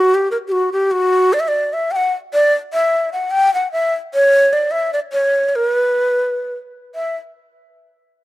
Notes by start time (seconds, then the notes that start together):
Already playing: F#4
0.15 G4
0.31 A#4
0.48 G4
0.52 F#4
0.73 G4
0.92 F#4
1.33 D5
1.40 E5
1.48 D5
1.73 E5
1.91 G5
1.96 F#5
2.34 D5
2.73 E5
3.13 F#5
3.31 G5
3.54 F#5
3.72 E5
4.14 C#5
4.53 D5
4.71 E5
4.93 D5
5.13 C#5
5.49 C#5
5.56 A#4
5.68 B4
6.95 E5